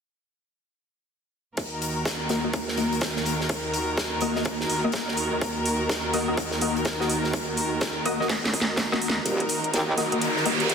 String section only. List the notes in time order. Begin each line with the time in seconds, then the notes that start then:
1.57 D#2 D#3 F#4 A#4
9.25 D#3 D#4 F#4 A#4